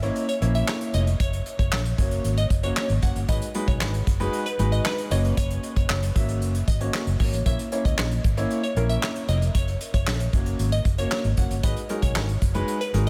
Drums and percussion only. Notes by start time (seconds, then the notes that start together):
0.02 closed hi-hat
0.16 closed hi-hat
0.29 closed hi-hat
0.42 closed hi-hat
0.55 closed hi-hat
0.68 snare, clap
0.81 closed hi-hat
0.94 closed hi-hat
1.07 closed hi-hat
1.20 kick, closed hi-hat
1.33 closed hi-hat
1.46 closed hi-hat
1.59 kick, closed hi-hat
1.72 snare, clap
1.85 closed hi-hat
1.98 kick, closed hi-hat
2.11 closed hi-hat
2.24 closed hi-hat
2.37 closed hi-hat
2.50 kick, closed hi-hat
2.63 closed hi-hat
2.77 snare, clap
2.89 closed hi-hat
3.02 kick, closed hi-hat
3.16 closed hi-hat
3.29 kick, closed hi-hat
3.42 closed hi-hat
3.54 closed hi-hat
3.68 kick, closed hi-hat
3.81 snare, clap
3.94 closed hi-hat
4.07 kick, closed hi-hat
4.20 closed hi-hat
4.33 closed hi-hat
4.46 closed hi-hat
4.59 closed hi-hat
4.72 closed hi-hat
4.85 snare, clap
4.98 closed hi-hat
5.11 closed hi-hat
5.25 closed hi-hat
5.37 kick, closed hi-hat
5.50 closed hi-hat
5.63 closed hi-hat
5.76 kick, closed hi-hat
5.90 snare, clap
6.03 closed hi-hat
6.16 kick, closed hi-hat
6.29 closed hi-hat
6.42 closed hi-hat
6.55 closed hi-hat
6.68 kick, closed hi-hat
6.81 closed hi-hat
6.94 snare, clap
7.07 closed hi-hat
7.20 kick, open hi-hat
7.33 closed hi-hat
7.46 kick, closed hi-hat
7.59 closed hi-hat
7.72 closed hi-hat
7.85 kick, closed hi-hat
7.98 snare, clap
8.11 closed hi-hat
8.24 kick, closed hi-hat
8.37 closed hi-hat
8.51 closed hi-hat
8.63 closed hi-hat
8.76 closed hi-hat
8.89 closed hi-hat
9.03 snare, clap
9.16 closed hi-hat
9.28 closed hi-hat
9.42 closed hi-hat
9.55 kick, closed hi-hat
9.68 closed hi-hat
9.81 closed hi-hat
9.94 kick, closed hi-hat
10.07 snare, clap
10.20 closed hi-hat
10.33 kick, closed hi-hat
10.46 closed hi-hat
10.59 closed hi-hat
10.72 closed hi-hat
10.85 kick, closed hi-hat
10.98 closed hi-hat
11.11 snare, clap
11.24 closed hi-hat
11.37 kick, closed hi-hat
11.51 closed hi-hat
11.63 kick, closed hi-hat
11.77 closed hi-hat
11.89 closed hi-hat
12.03 kick, closed hi-hat
12.16 snare, clap
12.29 closed hi-hat
12.42 kick, closed hi-hat
12.55 closed hi-hat
12.68 closed hi-hat
12.81 closed hi-hat
12.94 closed hi-hat